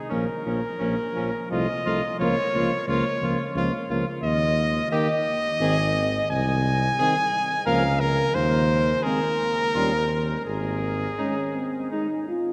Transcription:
Already playing: G#4
0.09 A#1 F3 A#3 C#4 A#4
0.45 A#1 F3 A#3 C#4
0.79 A#1 F3 A#3 C#4
1.14 A#1 F3 A#3 C#4
1.50 C2 F3 A3 F4 D#5
1.84 C2 F3 A3 F4
2.19 C#2 F3 A#3 F4 C#5
2.54 C#2 F3 A#3 F4
2.88 C#2 F3 A#3 F4 C#5
3.21 C#2 F3 A#3 F4
3.55 C#2 F3 A#3 F4
3.89 C#2 F3 A#3 F4
4.22 D#2 D#5
4.91 D#3 A#3 G4 D#5
5.60 G#1 D#3 C4 G#4
6.30 C2 G#5
6.99 D#3 C4 G#4
7.66 C#2 F3 A#3 A#4 F5
8.00 A#4
8.34 D#2 C5
9.02 G#3 C4 G#4 A#4
9.74 D#2 G3 C#4 F4
10.45 G#1 G#4
11.18 G#3 C#4 D#4
11.56 C4
11.91 G#3 D#4
12.28 F4

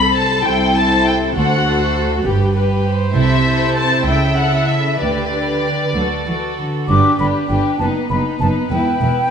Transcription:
Already playing: C2 A4 C5 B5
0.17 A5
0.46 C2 E4 G5
0.77 A4 C5 A5
1.08 G5
1.36 D2 F#4 A4 C5 F#5
1.67 A4 C5
2.25 G1 G2 G4 B4
2.55 G4 B4
2.85 C5
3.14 C2 C3 E4 A4 E5
3.46 E4 A4
3.77 A5
4.06 C#2 C#3 E4 A4 E5 G5
4.37 E4 A4 F#5
4.69 E5
4.99 D2 D3 G4 B4 D5
5.32 G4 B4
5.95 D2 F#3 F#4 A4
6.27 E3 F#4 A4
6.59 D3
6.89 G1 G2 D4 G4 B4 D6
7.19 G1 G2 D4 G4 B4 B5
7.49 G1 G2 D4 G4 B4 G5
7.79 F#1 F#2 B3 D#4 B4 A5
8.10 F#1 F#2 B3 D#4 B4 B5
8.40 F#1 F#2 B3 D#4 B4 A5
8.71 E1 E2 B3 E4 B4 G5
9.01 E1 E2 B3 E4 B4

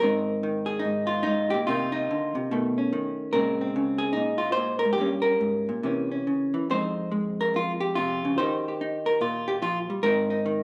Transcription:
0.00 G#2 D#3 C4 A#4
0.04 D#4
0.43 D#3
0.66 G#4
0.79 D#4
0.85 G#2
1.07 F4
1.23 G#2 D#4
1.50 A#2 G4
1.67 C3 D#3 A#3 D#4 F4
1.92 D#4
2.11 D3
2.35 C3
2.51 B2 D#3 A3
2.78 C#4
2.93 D#3
3.33 A#2 C#3 G#3 C4 A#4
3.61 C4
3.76 C#3
3.98 G#4
4.13 A#2 D#4
4.38 F4
4.52 C5
4.57 A#2
4.79 A#4
4.85 G#2
4.93 G4
4.98 G2 G3 A#3 C#4
5.22 A#4
5.41 G#2
5.69 A#2
5.83 C3 E3 A#3 C#4
6.12 C#4
6.27 C#3
6.54 E3
6.70 F2 G#3 C4 D#4 C5
7.12 G#3
7.41 A#4
7.54 F2 F4
7.80 G4
7.95 C3 F4
8.25 C#3
8.38 D#3 D#4 G4 C5
8.68 G4
8.81 D#4
9.06 A#4
9.21 A#2 F4
9.48 G4
9.62 F3 F4
9.90 G3
10.03 G#2 D#3 C4 D#4 A#4
10.30 D#4
10.46 D#3

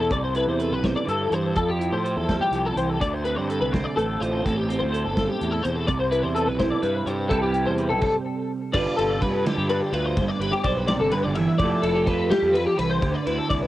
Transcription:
Already playing: B2 C4 A4
0.00 A4
0.10 C2 C3 D5, kick, closed hi-hat
0.24 C5
0.34 E4 B4, closed hi-hat
0.47 E2 C5
0.59 A4 B4, closed hi-hat
0.71 B1 B4
0.83 C3 C5, kick, snare, closed hi-hat
0.96 D5
1.05 G2 D3 A4, closed hi-hat
1.29 G2 E3 C5, closed hi-hat
1.54 F2 F3 A4, kick, closed hi-hat
1.69 G4
1.79 E4, closed hi-hat
1.92 A2 C5
2.04 C5, closed hi-hat
2.16 E2 A4
2.28 G3, kick, snare, closed hi-hat
2.41 G4
2.51 C2 F3, closed hi-hat
2.65 A4
2.76 C2 E3 C5, closed hi-hat
2.89 A4
3.00 D2 D3 D5, kick, closed hi-hat
3.13 C5
3.24 C4 B4, closed hi-hat
3.35 G2 C5
3.49 A4, closed hi-hat
3.61 C2 B4
3.72 C4 C5, kick, snare, closed hi-hat
3.84 D5
3.96 A1 A3 A4, closed hi-hat
4.20 A1 F4 C5, closed hi-hat
4.42 A1 A2 A4, kick, closed hi-hat
4.56 G4
4.69 C4, closed hi-hat
4.79 D2 C5
4.93 A4, closed hi-hat
5.04 G1 A4
5.16 G2, kick, snare, closed hi-hat
5.28 G4
5.38 E2 A2, closed hi-hat
5.51 A4
5.63 E2 B2 C5, closed hi-hat
5.75 A4
5.87 C2 C3 D5, kick, closed hi-hat
5.99 C5
6.11 E4 B4, closed hi-hat
6.22 E2 C5
6.35 A4 B4, closed hi-hat
6.47 B1 B4
6.59 E4 C5, kick, snare, closed hi-hat
6.70 D5
6.82 G2 G3 B4, closed hi-hat
7.06 G2 G4 C5, closed hi-hat
7.29 C2 C3 G3 E4 G4 A4 B4, kick, closed hi-hat
7.42 G4
7.54 E4, closed hi-hat
7.66 E2 C5
7.78 B4, closed hi-hat
7.89 B1 A4
8.01 kick, crash
8.73 G1 G2 G3 D4 F4 B4 D5, kick, crash
8.96 G1 F4 A4, ride
9.21 G2 B4, kick, ride
9.45 D3 G4, snare, ride
9.57 G2
9.69 D4 B4, ride
9.81 G4
9.92 D2 F4 B4, ride
10.04 C5
10.17 G1 G2, kick, ride
10.28 D5
10.39 G1 G4 B4, ride
10.52 G4
10.64 B1 C5 D5, kick, ride
10.76 B4
10.87 C3 D5, snare, ride
10.99 G1 A4
11.11 G2 D3 B4, ride
11.23 G1 D5
11.35 E3 E5, ride
11.58 F1 F3 A3 E4 D5, kick, ride
11.63 G4 A4
11.82 F1 E4 A4, ride
11.95 G4
12.06 F2 A4 B4, kick, ride
12.31 G3 G4, snare, ride
12.42 F2
12.53 F3 B4, ride
12.66 G4
12.77 C2 E3 B4, ride
12.90 C5
13.01 D2 D3, kick, ride
13.14 D5
13.26 D2 E4 B4, ride
13.38 A4
13.50 C2 D5, kick, ride
13.62 B4

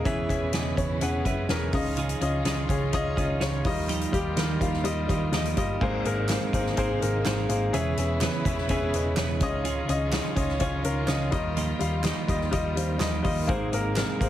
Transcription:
0.05 E1 C#3 E3 G#3 B3 C#4 E4 G#4 B4 E5, kick, closed hi-hat
0.28 E1 B3 C#4 E4 G#4 B4 E5, kick, closed hi-hat
0.53 E1 C#3 E3 B3 C#4 E4 G#4 B4 D#5, snare, closed hi-hat
0.76 E1 C#4 G#4 C#5, kick, closed hi-hat
1.01 E1 B3 C#4 E4 G#4 B4 F#5, closed hi-hat
1.25 F#1 B3 C#4 E4 G#4 B4 E5, kick, closed hi-hat
1.49 E1 C#3 E3 B3 C#4 E4 G#4 A#4 B4, snare, closed hi-hat
1.72 C#2 C#3 D#3 F3 C#4 D#4 F4 G#4 D#5, kick, open hi-hat
1.97 C#3 C#4 D#4 F4 G#4, closed hi-hat
2.09 closed hi-hat
2.21 C#2 C#4 D#4 F4 G#4 D#5, closed hi-hat
2.44 C#2 C#3 C#4 D#4 F4 G#4 D#5, snare, closed hi-hat
2.69 C#2 C#4 F4 G#4, kick, closed hi-hat
2.92 C#2 C#4 D#4 F4 G#4 D#5, kick, closed hi-hat
3.16 C#2 C#4 D#4 F4 G#4 D#5, kick, closed hi-hat
3.40 C#2 C#3 C#4 D#4 F4 G#4 C#5, snare, closed hi-hat
3.64 D#2 D#3 F3 G3 A#3 D#4 F4 G4 D#5, kick, open hi-hat
3.88 D#3 F3 A#3 D#4 G4 D#5, closed hi-hat
4.01 closed hi-hat
4.12 D#2 G3 A#3 D#4 F4 G4 D#5, kick, closed hi-hat
4.36 D#2 D#3 F3 G3 A#3 D#4 F4 G4 A#4 D#5, snare, closed hi-hat
4.60 D#2 G3 F4 F5, kick, closed hi-hat
4.73 snare
4.84 D#2 G3 A#3 D#4 F4 G4 D#5, closed hi-hat
5.08 D#2 G3 A#3 D#4 F4 G4 D#5, kick, closed hi-hat
5.32 D#2 D#3 F3 G3 A#3 D#4 F4 G4 D#5, snare, closed hi-hat
5.45 closed hi-hat
5.57 G1 G3 A#3 D#4 F4 G4 D#5, kick, closed hi-hat
5.80 G#1 G#2 C3 D#3 G#3 A#3 C4 D#4 G#4 A#4 C5, kick, crash
6.05 G#1 A#3 C4 D#4 G#4 A#4, closed hi-hat
6.29 G#2 G#3 A#3 C4 D#4 G#4 A#4 C5, snare, clap, closed hi-hat
6.53 G#1 A#3 C4 D#4 G#4 A#4 C5, kick, closed hi-hat
6.66 snare
6.77 G#1 A#3 C4 D#4 G#4 A#4 C5, kick, closed hi-hat
7.01 G#1 A#3 G#4 A#4, closed hi-hat
7.25 G#1 G#2 G#3 A#3 C4 D#4 G#4 A#4 C5, snare, clap, closed hi-hat
7.49 G#1 A#3 C4 D#4 G#4 A#4 C5, closed hi-hat
7.73 E1 C#3 E3 G#3 B3 C#4 E4 G#4 B4 E5, closed hi-hat
7.97 E1 B3 C#4 E4 G#4 B4 E5, closed hi-hat
8.21 C#3 E3 B3 C#4 E4 G#4 B4, snare, clap, closed hi-hat
8.45 E1 B3 C#4 E4 G#4 B4 E5, kick, closed hi-hat
8.58 snare
8.68 E1 B3 C#4 E4 G#4 B4 E5, kick, closed hi-hat
8.93 E1 B4 D#5, closed hi-hat
9.16 E1 C#3 E3 B3 E4 G#4 B4 C#5 E5, snare, clap, closed hi-hat
9.40 C#2 C#3 D#3 F3 C#4 D#4 F4 G#4 D#5, kick, closed hi-hat
9.64 C#3 C#4 D#4 F4 G#4, closed hi-hat
9.87 C#2 C#4 D#4 F4 G#4 D#5, closed hi-hat
10.12 C#3 C#4 D#4 F4 G#4 D#5, snare, clap, closed hi-hat
10.35 C#2 C#4 D#4 F4 G#4 D#5, kick, closed hi-hat
10.48 snare
10.59 C#2 C#4 D#4 F4 G#4 C#5, kick, closed hi-hat
10.84 C#2 C#4 F4 A#4, closed hi-hat
11.07 C#2 C#3 C#4 D#4 F4 G#4 D#5, snare, clap, closed hi-hat
11.31 D#2 D#3 G3 A#3 D#4 F4 G4 D#5, kick, closed hi-hat
11.56 D#3 F3 A#3 D#4 G4 D#5, closed hi-hat
11.79 D#2 G3 D#4 F4 G4 D#5 F5, closed hi-hat
11.83 A#3
12.03 D#3 F3 G3 A#3 D#4 F4 G4 D#5, snare, clap, closed hi-hat
12.28 D#2 G3 A#3 D#4 F4 G4 D#5, kick, closed hi-hat
12.41 snare
12.51 D#2 G3 A#3 D#4 F4 G4 D#5, kick, closed hi-hat
12.75 D#2 G3 F4 C5, closed hi-hat
12.98 D#2 D#3 F3 G3 A#3 D#4 F4 G4 D#5, snare, clap, closed hi-hat
13.23 D#2 G3 A#3 D#4 F4 G4 D#5, kick, open hi-hat
13.47 G#1 G#2 C3 G#3 A#3 C4 D#4 G#4 A#4 C5, kick, closed hi-hat
13.72 G#1 A#3 C4 D#4 G#4 A#4, closed hi-hat
13.96 G#2 G#3 A#3 C4 D#4 G#4 A#4, snare, clap, closed hi-hat
14.20 G#1 A#3 C4 D#4 G#4 A#4 C5, kick, closed hi-hat

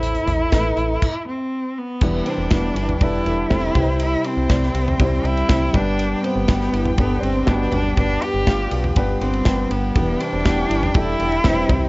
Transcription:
Already playing: A1 A2 A3 E4 C5
0.03 closed hi-hat
0.15 closed hi-hat
0.27 A1, closed hi-hat, floor tom
0.52 A1 A3 E4 B4, kick, snare, closed hi-hat
0.77 A1, closed hi-hat
1.02 kick, crash
1.28 C4
1.78 B3
2.01 E1 E3 G3 D4 E4 B4 D5 G5, kick, crash
2.25 C3 C4 D4, ride
2.38 E1
2.50 E1 B2 G3 B3 D4 E4 B4, kick, snare, ride
2.75 G1 E3 E4, ride
2.88 floor tom, ride
3.00 E1 D3 G3 D4 E4 B4, kick, ride
3.25 E1 D3 D4, ride
3.50 E1 C3 G3 C4 D4 E4 A4, kick, snare, ride
3.75 C2 C3 G3 C4 E4 B4 C5, kick, ride
3.83 C5
4.00 E4, ride
4.24 C4, ride
4.37 C2
4.49 C2 G3 C4 E4 D5, kick, snare, ride
4.63 snare
4.74 C2, ride
4.88 floor tom
4.99 C2 G3 C4 E4 C5, kick, ride
5.24 C2 E4, ride
5.37 ride
5.49 C2 G3 C4 E4 C5, kick, snare, ride
5.73 G1 G2 G3 B3 D4 B4, kick, ride
5.99 ride
6.22 C3 B3 C4, ride
6.36 G1
6.48 G1 B2 G3 B3 D4 B4, kick, snare, ride
6.61 snare
6.71 G1 E3 E4, ride
6.85 floor tom
6.98 G1 D3 G3 B3 D4 B4, kick, ride
7.21 G1 C3 C4, ride
7.46 G1 B2 G3 B3 D4 G4, kick, snare, ride
7.72 G1 G2 D4, floor tom, ride
7.97 G1 G3 B3 D4 B4, kick, ride
8.22 G4, ride
8.34 G1
8.47 G1 G3 B3 D4 F4, kick, snare, ride
8.71 B1, ride
8.84 floor tom
8.96 G1 G3 B3 D4 B4, kick, ride
9.21 G1 C4, ride
9.34 ride
9.46 G1 G3 B3 D4 B4, kick, snare, ride
9.71 G1 B3, ride
9.95 E1 E3 G3 D4 E4 B4 D5 G5, kick, ride
10.20 C3 C4 D4, ride
10.33 E1
10.44 E1 B2 G3 B3 D4 E4 G4, kick, snare, ride
10.69 G1 E3 E4, ride
10.83 floor tom
10.94 E1 D3 G3 D4 E4 A4, kick, ride
11.19 E1 D3 D4, ride
11.32 ride
11.44 E1 C3 G3 C4 D4 E4 B4, kick, snare, ride
11.68 C2 C3 G3 C4 E4 C5 G5, kick, floor tom, ride

